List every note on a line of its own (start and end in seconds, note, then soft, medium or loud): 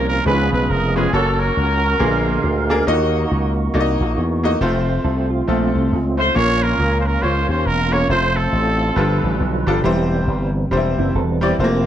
0.00 0.19 C2 medium
0.00 1.12 F3 medium
0.00 0.25 A#3 medium
0.00 0.23 C#4 medium
0.00 1.11 C#4 medium
0.00 0.23 F4 medium
0.09 0.25 A#4 medium
0.26 0.48 C#2 loud
0.26 0.92 C#3 medium
0.26 0.70 G#3 medium
0.26 1.12 G#3 medium
0.26 1.12 B3 medium
0.26 0.71 C#4 medium
0.26 0.33 D#4 soft
0.26 1.10 F4 medium
0.26 1.13 G#4 medium
0.26 0.96 G#4 medium
0.26 0.51 B4 medium
0.26 0.71 B4 medium
0.32 0.74 F4 medium
0.53 0.67 B1 medium
0.53 0.71 B4 medium
0.53 0.69 B4 medium
0.70 1.07 F1 medium
0.70 0.96 A#4 medium
0.96 1.07 G#3 medium
0.96 1.08 C#4 medium
0.96 1.08 F4 medium
0.96 1.15 G#4 medium
0.96 1.13 G#4 medium
0.96 1.08 B4 medium
1.13 1.50 F#1 loud
1.13 1.76 A#3 medium
1.13 1.76 C#4 medium
1.13 1.99 C#4 medium
1.13 1.40 C#4 medium
1.13 1.76 F#4 medium
1.13 1.40 F#4 medium
1.13 2.00 F#4 medium
1.13 1.32 A4 medium
1.13 1.40 A4 medium
1.13 2.85 A#4 medium
1.13 1.76 C#5 medium
1.32 1.41 A4 medium
1.39 2.67 C#4 medium
1.39 2.67 F#4 medium
1.39 2.70 A#4 medium
1.39 2.71 A#4 medium
1.57 1.94 C#2 medium
1.99 2.37 A#1 medium
1.99 2.66 A#2 medium
1.99 2.44 D3 medium
1.99 2.86 D3 medium
1.99 2.86 G#3 medium
1.99 2.44 A#3 medium
1.99 2.45 B3 medium
1.99 2.45 G#4 medium
1.99 2.86 F5 medium
2.44 2.81 D2 medium
2.69 2.81 A#3 medium
2.69 2.82 D4 medium
2.69 2.82 G#4 medium
2.69 2.82 A#4 loud
2.87 3.24 D#2 medium
2.87 3.53 D#3 medium
2.87 3.49 A#3 medium
2.87 4.60 A#3 medium
2.87 3.50 D#4 medium
2.87 4.59 D#4 medium
2.87 2.94 F4 medium
2.87 4.59 F#4 medium
2.87 3.50 D#5 loud
2.93 3.53 F#4 medium
3.31 3.68 C#2 medium
3.74 3.97 C2 medium
3.74 4.18 A#3 medium
3.74 4.19 D#4 medium
3.74 4.19 F#4 medium
3.74 3.81 D5 medium
3.80 4.22 D#5 medium
4.00 4.15 A#1 medium
4.17 4.54 E2 medium
4.43 4.55 A#3 medium
4.43 4.56 D#4 medium
4.43 4.56 F#4 medium
4.43 4.56 D#5 medium
4.61 4.98 F1 loud
4.61 5.24 A3 medium
4.61 6.33 A3 medium
4.61 6.33 C4 medium
4.61 5.24 C4 medium
4.61 6.34 F4 medium
4.61 5.24 F4 medium
4.61 5.24 C5 medium
5.04 5.41 C2 medium
5.04 5.29 F4 medium
5.04 5.30 A4 medium
5.30 5.47 F4 medium
5.47 5.71 A#1 medium
5.47 5.92 A3 medium
5.47 6.15 A3 medium
5.47 6.14 C4 medium
5.47 5.93 C4 medium
5.47 5.93 F4 medium
5.47 5.93 A4 medium
5.75 5.89 C2 medium
5.92 6.29 C#2 medium
6.17 6.29 A3 medium
6.17 6.30 C4 medium
6.17 6.30 F4 medium
6.17 6.37 C5 medium
6.17 6.30 C5 medium
6.17 6.35 C5 medium
6.34 6.73 A#1 medium
6.34 7.01 A#2 medium
6.34 6.98 A#3 medium
6.34 8.08 A#3 medium
6.34 6.98 C#4 medium
6.34 8.08 C#4 medium
6.34 6.98 F4 medium
6.34 9.81 F4 medium
6.34 6.62 F4 medium
6.34 6.63 A#4 medium
6.34 6.64 C#5 loud
6.34 6.98 C#5 medium
6.34 6.62 C#5 medium
6.63 7.46 C#4 medium
6.63 7.22 F4 medium
6.63 6.99 A#4 medium
6.63 7.06 A#4 medium
6.79 7.16 C#2 medium
7.00 7.08 C5 medium
7.07 7.24 A#4 medium
7.07 7.22 A#4 medium
7.22 7.45 C#2 medium
7.22 7.67 A#3 medium
7.22 7.67 C#4 medium
7.22 7.67 F4 medium
7.22 8.06 F4 medium
7.22 7.49 C5 medium
7.22 7.50 C5 medium
7.22 7.68 C#5 medium
7.49 7.63 D#2 medium
7.49 7.68 C5 medium
7.49 7.66 C5 medium
7.66 8.03 E1 medium
7.66 7.94 A#4 medium
7.66 7.93 A#4 medium
7.91 8.03 A#3 medium
7.91 8.04 C#4 medium
7.91 8.04 F4 medium
7.91 8.04 A#4 medium
7.91 8.10 C#5 medium
7.91 8.10 C#5 loud
8.09 8.46 F1 medium
8.09 8.72 A3 medium
8.09 8.96 A3 medium
8.09 8.72 C4 medium
8.09 8.96 C4 medium
8.09 8.73 F4 medium
8.09 8.35 F4 medium
8.09 8.36 A4 medium
8.09 8.73 C5 medium
8.09 8.38 C5 loud
8.09 8.37 C5 loud
8.36 9.63 C4 medium
8.36 9.63 F4 medium
8.36 9.67 A4 medium
8.36 9.68 A4 medium
8.52 8.90 A1 medium
8.96 9.19 G1 loud
8.96 9.63 G2 medium
8.96 9.83 D3 medium
8.96 9.83 F3 medium
8.96 9.41 G3 medium
8.96 11.56 G3 medium
8.96 9.42 D4 medium
8.96 9.42 F4 medium
8.96 9.83 B4 medium
8.96 9.42 B4 medium
9.23 9.38 A1 medium
9.40 9.63 B1 medium
9.67 9.81 G1 medium
9.67 9.78 G3 medium
9.67 9.79 D4 medium
9.67 9.79 F4 medium
9.67 9.79 A4 medium
9.84 10.21 E1 loud
9.84 11.57 E3 medium
9.84 10.50 E3 medium
9.84 10.47 G3 medium
9.84 11.86 C4 medium
9.84 10.47 C4 medium
9.84 10.47 E4 medium
9.84 10.48 C5 loud
10.27 10.65 G1 medium
10.71 10.94 E1 medium
10.71 11.16 G3 medium
10.71 11.16 C4 medium
10.71 10.78 D4 medium
10.71 11.17 C5 medium
10.77 11.19 E4 medium
10.98 11.12 F#1 medium
10.98 11.15 C4 medium
10.98 11.15 E4 medium
11.15 11.52 E1 medium
11.15 11.41 F#4 medium
11.15 11.40 A4 medium
11.41 11.53 G3 medium
11.41 11.53 C4 medium
11.41 11.54 E4 medium
11.41 11.84 E4 medium
11.41 11.83 G4 medium
11.41 11.54 D5 medium
11.59 11.86 F1 medium
11.59 11.86 F3 medium
11.59 11.65 A3 medium
11.59 11.86 A#3 medium
11.59 11.86 C4 medium
11.59 11.86 F4 medium
11.59 11.86 C5 medium
11.64 11.86 A#3 medium